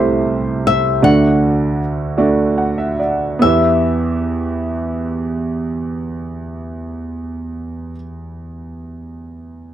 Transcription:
0.00 0.98 C2 medium
0.00 0.98 C3 medium
0.00 1.02 A3 medium
0.00 1.03 E4 medium
0.00 1.04 G4 medium
0.00 1.04 C5 medium
0.00 0.66 E5 medium
0.67 1.04 E5 medium
1.02 3.37 D2 soft
1.02 3.37 D3 soft
1.02 1.79 A3 medium
1.02 1.79 D4 medium
1.02 1.79 F#4 medium
1.02 1.79 D5 medium
1.02 2.96 F#5 medium
2.18 3.00 A3 medium
2.18 3.00 D4 medium
2.18 3.00 F#4 medium
2.18 2.98 D5 medium
2.58 2.77 F#5 soft
2.78 2.97 E5 medium
2.99 3.38 D5 soft
3.39 7.93 E2 medium
3.39 7.91 B3 medium
3.39 7.92 E4 medium
3.39 7.94 G4 soft
3.39 7.93 E5 medium
3.43 7.95 E5 medium

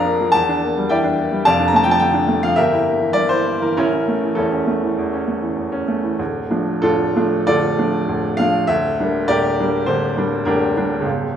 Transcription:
0.00 0.32 A#1 medium
0.00 0.36 F2 medium
0.00 0.21 F3 medium
0.00 0.06 A#3 medium
0.00 0.37 D4 medium
0.00 0.31 D5 medium
0.00 0.31 F5 medium
0.00 0.34 A#5 loud
0.00 0.36 C6 loud
0.06 0.28 A#3 medium
0.21 0.35 F3 medium
0.32 1.42 E2 medium
0.32 0.89 A5 loud
0.49 0.71 D4 medium
0.62 0.84 A#3 medium
0.77 0.99 G3 medium
0.89 1.12 E3 medium
0.89 1.16 D5 medium
0.89 1.16 E5 medium
0.89 1.17 G5 medium
1.04 1.26 D4 medium
1.18 1.40 A#3 medium
1.32 1.46 G3 medium
1.45 2.53 F1 medium
1.45 2.54 F2 medium
1.45 1.67 D5 medium
1.45 1.67 F5 medium
1.45 1.68 A5 loud
1.60 1.82 D4 medium
1.68 1.76 A#5 medium
1.74 1.96 A3 medium
1.74 1.84 A5 medium
1.84 2.09 F3 medium
1.84 1.92 G5 loud
1.91 2.00 A5 loud
2.00 2.23 D3 medium
2.00 2.42 G5 medium
2.14 2.36 D4 medium
2.28 2.51 A3 medium
2.43 2.57 F3 medium
2.43 2.57 F5 medium
2.56 3.74 G1 medium
2.56 3.11 G4 medium
2.56 3.11 A#4 medium
2.56 3.15 E5 loud
2.71 2.94 E4 medium
2.85 3.09 A#3 medium
2.99 3.24 E3 medium
3.13 3.39 G2 medium
3.13 3.29 D5 loud
3.29 3.55 E4 medium
3.29 3.60 C5 medium
3.46 3.70 A#3 medium
3.62 3.77 E3 medium
3.62 3.75 A#4 medium
3.77 4.95 A1 medium
3.77 3.91 C#4 medium
3.77 4.35 E4 medium
3.77 4.39 A#4 medium
3.93 4.17 C#4 soft
4.08 4.32 A3 medium
4.23 4.47 E3 medium
4.35 4.62 E2 medium
4.35 4.51 C#4 medium
4.35 5.52 E4 medium
4.35 5.56 A4 medium
4.52 4.77 C#4 soft
4.67 4.91 A3 medium
4.83 5.07 E3 soft
4.98 5.21 E2 medium
5.13 5.37 C#4 soft
5.28 5.51 A3 soft
5.41 5.66 E3 soft
5.57 5.81 E2 soft
5.72 5.97 C#4 medium
5.88 6.13 A3 medium
6.03 6.19 E3 soft
6.19 6.49 D1 medium
6.19 6.50 D2 medium
6.50 6.79 F3 medium
6.50 6.79 A3 soft
6.50 6.79 D4 medium
6.82 7.14 D1 medium
6.82 7.14 D2 medium
6.82 7.15 D4 medium
6.82 7.44 F4 medium
6.82 7.47 A4 medium
7.16 7.45 F3 soft
7.16 7.45 A3 medium
7.16 7.45 D4 medium
7.47 7.78 D1 medium
7.47 7.78 D2 medium
7.47 8.34 F4 medium
7.47 8.35 A4 medium
7.47 8.38 D5 loud
7.78 8.05 F3 soft
7.78 8.05 A3 medium
7.78 8.05 D4 medium
8.08 8.37 D1 medium
8.08 8.38 D2 medium
8.37 8.66 F3 medium
8.37 8.66 A3 medium
8.37 8.66 D4 medium
8.37 8.68 F5 loud
8.67 8.99 D1 medium
8.67 8.98 D2 medium
8.67 9.29 E5 loud
9.00 9.27 G3 soft
9.00 9.27 A#3 medium
9.00 9.27 D4 medium
9.28 9.58 D1 medium
9.28 9.58 D2 medium
9.28 9.84 G4 medium
9.28 9.84 A#4 medium
9.28 9.87 D5 loud
9.60 9.86 G3 medium
9.60 9.86 A#3 medium
9.60 9.86 D4 medium
9.86 10.16 D1 medium
9.86 10.16 D2 medium
9.86 10.47 C5 medium
10.17 10.44 G3 medium
10.17 10.44 A#3 soft
10.17 10.45 D4 medium
10.45 10.76 D1 medium
10.45 10.76 D2 medium
10.45 10.76 D4 medium
10.45 11.02 G4 medium
10.45 11.05 A#4 medium
10.77 11.03 G3 medium
10.77 11.03 A#3 medium
10.77 11.03 D4 medium
11.01 11.31 C#2 medium
11.06 11.34 C#1 medium

